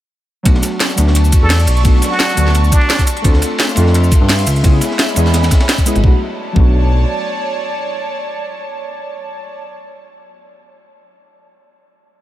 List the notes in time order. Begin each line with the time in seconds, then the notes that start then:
0.43 B1 F#3 A3 B3 D4 D5 A5 C#6, kick, closed hi-hat, ride
0.48 F#4
0.54 snare
0.63 snare, closed hi-hat, ride, shaker
0.80 snare, closed hi-hat, ride
0.89 snare, shaker
0.95 D2 F#3 A3 B3 D4, snare, closed hi-hat, ride, shaker
1.00 F#4
1.07 snare
1.15 closed hi-hat, ride
1.25 shaker
1.32 kick, closed hi-hat, ride, shaker
1.42 E2 A4
1.50 snare, closed hi-hat, open hi-hat
1.59 closed hi-hat, shaker
1.67 B1, closed hi-hat, ride, shaker
1.77 closed hi-hat
1.82 F#3 A3 B3 D4, kick, closed hi-hat, ride
1.87 F#4
2.02 snare, closed hi-hat, ride, shaker
2.11 F#4, snare
2.19 snare, closed hi-hat, ride
2.29 snare, shaker
2.35 D2 F#3 A3 B3 D4, closed hi-hat, ride, shaker
2.39 F#4
2.47 snare
2.55 closed hi-hat, ride
2.64 shaker
2.72 D4, kick, closed hi-hat, ride, shaker
2.81 ride
2.90 snare, closed hi-hat, ride
2.99 kick, snare, closed hi-hat, shaker
3.07 closed hi-hat, ride, shaker
3.17 closed hi-hat, ride
3.22 D2 A3 C4 D4 F4 E5 F5 C6, kick, closed hi-hat, ride
3.27 A4
3.33 snare
3.42 snare, closed hi-hat, ride, shaker
3.58 snare, closed hi-hat, ride
3.69 snare, shaker
3.75 F2 A3 C4 D4 F4, snare, closed hi-hat, ride, shaker
3.79 A4
3.86 snare
3.94 closed hi-hat, ride
4.04 shaker
4.12 kick, closed hi-hat, ride, shaker
4.21 G2
4.28 snare, closed hi-hat, open hi-hat
4.39 closed hi-hat, shaker
4.46 C#2 D#5 B5, closed hi-hat, ride, shaker
4.56 closed hi-hat
4.62 G#3 B3 C#4 E4, kick, closed hi-hat, ride
4.66 G#4
4.81 snare, closed hi-hat, ride, shaker
4.91 snare
4.99 snare, closed hi-hat, ride
5.08 snare, shaker
5.14 E2 G#3 B3 C#4 E4, closed hi-hat, ride, shaker
5.19 G#4
5.26 snare
5.34 snare, closed hi-hat, ride
5.43 snare, ride, shaker
5.51 kick, snare, closed hi-hat, ride, shaker
5.60 snare, ride
5.69 snare, closed hi-hat, ride
5.78 kick, snare, closed hi-hat, shaker
5.85 G#3 B3 C#4 E4 G#4, closed hi-hat, ride, shaker
5.95 G#1, closed hi-hat, ride
6.00 B1 F#3 A3 B3 C#5 D5 A5, kick
6.05 D4 F#4
6.53 B1 F#3 A3 B3, kick
6.58 D4 F#4